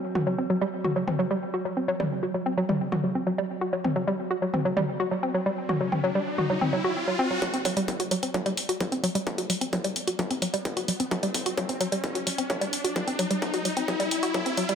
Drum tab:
HH |----------------|----------------|----------------|----------------|
T2 |-o-----o-o------|-o-----o-o------|-o-----o-o------|-o-o---o-o------|
BD |----------------|----------------|----------------|----------------|

HH |xxoxxxoxxxoxxxox|xxoxxxoxxxoxxxox|xxoxxxoxxxoxxxox|xxoxxxoxxxoxxxox|
T2 |----------------|----------------|----------------|----------------|
BD |o-o-o---o---o---|o---o---o---o---|o-o-o---o---o---|o---o---o---o---|